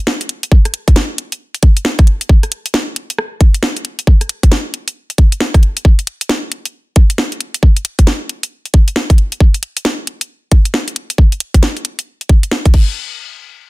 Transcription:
0.07 snare
0.21 closed hi-hat
0.29 closed hi-hat
0.43 closed hi-hat
0.52 kick
0.65 cross-stick, closed hi-hat
0.74 closed hi-hat
0.88 kick, closed hi-hat
0.96 snare
1.18 closed hi-hat
1.32 closed hi-hat
1.55 closed hi-hat
1.63 kick, closed hi-hat
1.77 closed hi-hat
1.85 snare
1.99 kick, cross-stick, closed hi-hat
2.07 closed hi-hat
2.21 closed hi-hat
2.29 kick
2.43 cross-stick, closed hi-hat
2.52 closed hi-hat
2.66 closed hi-hat
2.74 snare
2.96 closed hi-hat
3.10 closed hi-hat
3.18 cross-stick
3.41 kick, closed hi-hat
3.54 closed hi-hat
3.63 snare
3.77 closed hi-hat
3.85 closed hi-hat
3.99 closed hi-hat
4.07 kick
4.21 cross-stick, closed hi-hat
4.29 closed hi-hat
4.43 kick, closed hi-hat
4.52 snare
4.74 closed hi-hat
4.88 closed hi-hat
5.10 closed hi-hat
5.18 kick, closed hi-hat
5.32 closed hi-hat
5.40 snare
5.54 kick, cross-stick, closed hi-hat
5.63 closed hi-hat
5.77 closed hi-hat
5.85 kick
5.99 closed hi-hat
6.07 closed hi-hat
6.21 closed hi-hat
6.29 snare
6.52 closed hi-hat
6.65 closed hi-hat
6.96 kick, closed hi-hat
7.10 closed hi-hat
7.18 snare
7.32 closed hi-hat
7.41 closed hi-hat
7.54 closed hi-hat
7.63 kick
7.77 closed hi-hat
7.85 closed hi-hat
7.99 kick, closed hi-hat
8.07 snare
8.29 closed hi-hat
8.43 closed hi-hat
8.65 closed hi-hat
8.74 kick, closed hi-hat
8.88 closed hi-hat
8.96 snare
9.10 kick, closed hi-hat
9.18 closed hi-hat
9.32 closed hi-hat
9.40 kick
9.54 closed hi-hat
9.63 closed hi-hat
9.77 closed hi-hat
9.85 snare
10.07 closed hi-hat
10.21 closed hi-hat
10.52 kick, closed hi-hat
10.65 closed hi-hat
10.74 snare
10.88 closed hi-hat
10.96 closed hi-hat
11.10 closed hi-hat
11.18 kick
11.32 closed hi-hat
11.40 closed hi-hat
11.54 kick, closed hi-hat
11.63 snare
11.77 closed hi-hat
11.85 closed hi-hat
11.99 closed hi-hat
12.21 closed hi-hat
12.29 kick, closed hi-hat
12.43 closed hi-hat
12.51 snare
12.65 kick, closed hi-hat
12.74 kick, crash

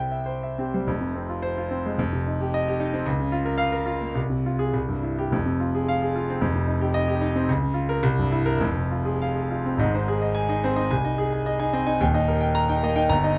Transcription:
Already playing: C2 C5 E5 G5
0.11 E5
0.26 C5
0.43 E5
0.58 C4 G4
0.74 G3 C5
0.87 F1 F2
1.01 C3
1.15 C4
1.29 F4
1.42 C5
1.58 F4
1.71 C4
1.86 G#3
1.97 F1 F2
2.13 C3
2.26 D#4
2.41 G4
2.54 D#5
2.68 G4
2.80 D#4
2.94 C4
3.06 C#2
3.20 C#3
3.32 F4
3.45 A#4
3.58 F5
3.72 A#4
3.86 F4
4.00 A#3
4.15 C2
4.30 C3
4.46 F4
4.59 G#4
4.74 C2
4.88 G2
5.03 E4
5.19 G4
5.31 F1 F2
5.46 C3
5.60 F4
5.75 G#4
5.88 F5
6.02 G#4
6.16 F4
6.30 C4
6.41 F1 F2
6.56 C3
6.68 D#4
6.81 G4
6.94 D#5
7.08 G4
7.21 D#4
7.36 C4
7.49 C#2
7.62 C#3
7.74 F4
7.89 A#4
8.03 C2
8.19 G2
8.32 E4
8.46 A#4
8.59 F1 F2
8.76 C3
8.91 F4
9.05 G#4
9.21 F5
9.36 G#4
9.50 F4
9.66 C4
9.78 G#1 G#2 D#5
9.94 D#4 C5
10.08 G#4
10.22 D#5
10.35 G#5
10.49 D#4 D#5
10.64 C4 C5
10.76 D#4 D#5
10.91 C2 G#5
11.04 D#4 D#5
11.18 G#4
11.32 G#5
11.46 D#5
11.60 D#4 G#5
11.73 C4 D#5
11.87 D#4 G#5
12.00 D#1 D#2 G5
12.14 D#4 D#5
12.28 A#4
12.41 G5
12.55 A#5
12.69 D#4 G5
12.83 A#3 D#5
12.96 D#4 G5
13.09 G1 A#5
13.24 D#4 D#5

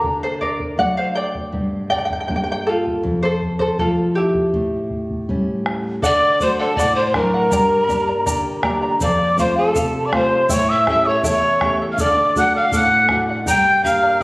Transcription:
Already playing: F#4 A4
0.01 D3, bombo low
0.23 A4 C5
0.41 A#4 D5, bombo low
0.60 bombo low
0.78 F#3 A3 D4 D5 F#5, bombo low
0.97 C5 F5
1.15 D5 G5
1.35 bombo low
1.52 G2, bombo low
1.90 D5 G5, bombo low
1.98 G5
2.05 G5
2.10 G5, bombo low
2.20 G5
2.28 G3 A#3 D4 G5, bombo low
2.36 G5
2.44 G5
2.52 G5
2.67 F4 A4
2.87 bombo low
3.03 F2, bombo low
3.23 A4 C5
3.42 bombo low
3.59 A4 C5, bombo low
3.79 F3 A3 C4 F4 A4, bombo low
4.15 E4 G4
4.34 bombo low
4.53 A2, bombo low
4.90 bombo low
5.10 bombo low
5.29 G3 A3 C#4, bombo low
5.66 bombo rim
6.02 D3 A4 D5 F#5 D6, bombo low, shaker
6.40 A3 D4 F#4 A4 C5 D5 F#5 C6, bombo low, shaker
6.59 A4 D5 F#5 A5
6.76 A2 A4 D5 F#5, bombo low, shaker
6.80 D6
6.95 C5 C6
7.06 C5 C6
7.14 F#3 D4 F#4 A4 A#4 D5 F#5 A#5, bombo rim, bombo low
7.34 D5 F#5
7.51 G2 G4 A#4 D5 G5 A#5, bombo low, shaker
7.88 A#3 D4 G4 A#4 D5 G5 A#5, bombo low, shaker
8.08 A#4 D5 A#5
8.26 D3 G4 A#4 D5 G5 A#5, bombo low, shaker
8.63 A#3 D4 G4 A#4 D5 G5 A#5, bombo rim, bombo low
8.82 A#4 D5 A#5
9.00 F2 A4 C5 D5 F5, bombo low, shaker
9.04 D6
9.37 A3 C4 F4 A4 C5 F5 C6, bombo low, shaker
9.56 A4 C5 F5 A5
9.75 C3 A4 C5 F5, bombo low, shaker
10.05 D5 D6
10.12 A3 C4 F4 A4 C5 F5 C6, bombo rim, bombo low
10.31 C5 F5
10.48 A2 E4 A4 C#5 E5 G5 C#6, bombo low, shaker
10.70 E5 E6
10.87 A3 C#4 E4 G4 A4 E5 G5 E6, bombo rim, bombo low
11.05 E4 A4 C#5 E5 C#6
11.23 E2 E4 A4 C#5 E5 G5 C#6, bombo low, shaker
11.61 A3 C#4 E4 G4 A4 E5 G5, bombo rim, bombo low
11.81 E4 A4 E5
11.92 F5 F6
11.98 D3 A4 D5 F#5 D6, bombo low, shaker
12.36 A3 D4 F#4 A4 D5 F#5 F#6, bombo low, shaker
12.54 D5 F5 F#5 F6
12.72 A2 A4 D5 F#5 F#6, bombo low, shaker
13.09 A3 D4 F#4 A4 D5 F#5, bombo rim, bombo low
13.29 D5 F#5
13.46 G2 G4 A#4 D5 G5 A#5 G6, bombo low, shaker
13.83 A#3 D4 G4 A#4 D5 F5 G5 A#5 F6, bombo low, shaker
14.03 A#4 D5 A#5

